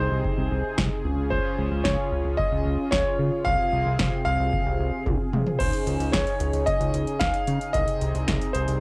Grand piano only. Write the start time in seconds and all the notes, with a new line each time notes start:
Already playing: C5
1.30 C5
1.84 C#5
2.37 D#5
2.91 C#5
3.45 F5
4.25 F5
5.59 C5
6.12 C#5
6.66 D#5
7.19 F5
7.73 D#5
8.53 C5